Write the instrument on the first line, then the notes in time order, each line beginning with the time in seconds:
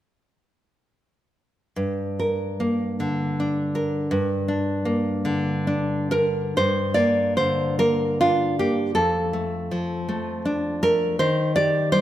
nylon-string guitar
1.76 G2
2.20 A#4
2.60 A#3
3.00 D3
3.40 D4
3.75 A#4
4.11 G2
4.48 D4
4.85 A#3
5.25 D3
5.67 D4
6.11 A#4
6.57 G2 C5
6.94 A#3 D5
7.37 D3 C5
7.79 A#3 A#4
8.21 D4 F4
8.59 A#3 G4
8.95 F2 A4
9.33 A3
9.71 F3
10.09 A3
10.45 D4
10.83 A3 A#4
11.19 D#3 C5
11.56 G4 D5
11.92 G3 C5